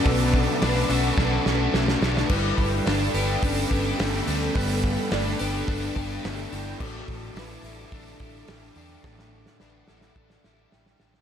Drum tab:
CC |----------------|x---------------|----------------|x---------------|
HH |o---o-o---------|--o-o-o-o-o-o-o-|o-o-o-o-o-o-o-o-|--o-o-o-o-o-o-o-|
SD |----o---o-o-oooo|----o-------o---|----o-------o---|----o-------o---|
BD |o-o-----o-------|o-o-----o-o-----|o-o-----o-o-----|o-o-----o-o-----|

CC |----------------|
HH |----------------|
SD |oo-oo-oo-oo-oooo|
BD |o-------o-------|